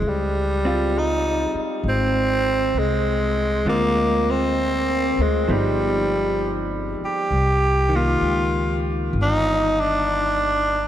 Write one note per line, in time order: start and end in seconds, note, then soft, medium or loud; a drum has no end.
0.02 1.49 C#2 medium
0.08 1.00 G3 medium
0.65 3.67 C4 soft
0.65 3.66 F4 medium
0.99 1.69 D#4 medium
1.54 muted upright bass stroke soft
1.84 2.71 G#1 medium
1.89 2.81 C4 medium
2.74 3.61 C2 medium
2.79 3.68 G#3 medium
3.65 5.13 D2 medium
3.65 5.48 D3 soft
3.65 5.47 G#3 soft
3.65 4.32 A#3 medium
3.65 5.49 C4 medium
3.65 5.49 F4 medium
4.30 5.23 C4 medium
5.18 5.46 D2 medium
5.18 5.53 G#3 medium
5.48 6.96 G1 medium
5.48 7.30 F3 soft
5.48 6.65 G3 medium
5.48 7.31 B3 soft
5.48 7.31 D#4 soft
7.01 muted upright bass stroke soft
7.05 7.98 G4 medium
7.31 8.18 C2 medium
7.89 10.88 D#3 soft
7.96 10.88 A#3 medium
7.96 8.85 F4 medium
8.21 9.08 C#2 medium
9.13 10.88 G1 medium
9.22 9.82 D#4 medium
9.80 10.88 D4 medium